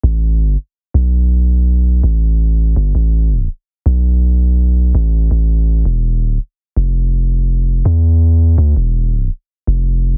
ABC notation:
X:1
M:4/4
L:1/8
Q:"Swing 16ths" 1/4=165
K:Gmix
V:1 name="808-style bass" clef=bass
A,,,3 z2 B,,,3- | B,,,3 A,,,4 G,,, | A,,,3 z2 B,,,3- | B,,,3 A,,,2 A,,,3 |
E,,,3 z2 F,,,3- | F,,,3 E,,4 D,, | E,,,3 z2 F,,,3 |]